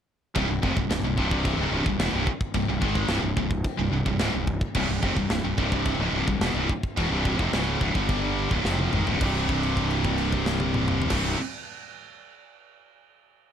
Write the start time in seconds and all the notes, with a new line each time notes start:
0.35 C1 C2 G2, kick, china
0.48 C1 C2 G2
0.62 F1 F2 C3, kick
0.76 C1 C2 G2, kick
0.89 C1 C2 G2, snare, china
1.02 C1 C2 G2
1.17 C1 C2 G2 C3, kick
1.31 kick
1.45 kick, china
1.58 C#1 C#2 G#2
1.71 C1 C2 G2
1.86 C1 C2 G2, kick
1.99 E1 E2 B2, snare, china
2.13 C1 C2 G2
2.27 kick
2.41 kick
2.54 C1 C2 G2, kick, china
2.68 C1 C2 G2
2.81 G#1 G#2 D#3 G#3, kick
2.95 kick
3.08 C1 C2 G2, snare, china
3.22 C1 C2 G2
3.37 C1 C2 G2, kick
3.51 kick
3.64 kick, china
3.78 C1 C2 G2
3.92 C1 C2 G2
4.06 C1 C2 G2, kick
4.19 C#1 C#2 G#2, snare, china
4.34 C1 C2 G2
4.47 kick
4.61 kick
4.75 C1 C2 G2, kick, crash, china
4.89 C1 C2 G2
5.03 F1 F2 C3, kick
5.17 C1 C2 G2, kick
5.30 C1 C2 G2, snare, china
5.44 C1 C2 G2
5.58 C1 C2 G2 C3, kick
5.72 kick
5.85 kick, china
5.99 C#1 C#2 G#2
6.13 C1 C2 G2
6.28 C1 C2 G2, kick
6.40 E1 E2 B2, snare, china
6.54 C1 C2 G2
6.69 kick
6.83 kick
6.97 E1 E2 B2, kick, china
7.10 C1 C2 G2 C3
7.25 kick
7.39 F1 F2 C3, kick
7.53 C#1 C#2 G#2 C#3, snare, china
7.81 C1 C2 G2, kick
7.95 G1 G2 D3 G3, kick
8.09 kick, china
8.51 C#1 C#2 G#2, kick
8.64 F1 F2 C3 F3, snare
8.79 high tom
8.92 G#1 G#2 D#3, mid tom
9.06 C1 C2 G2, floor tom
9.19 C1 C2 G2 C3, kick, crash
9.49 kick, crash
9.63 crash
9.77 kick, crash
9.91 crash
10.04 kick, crash
10.18 crash
10.32 kick, crash
10.46 snare
10.60 high tom
10.74 mid tom
10.88 mid tom
11.02 floor tom
11.09 C1 C2 G2, kick, snare, crash
11.14 C3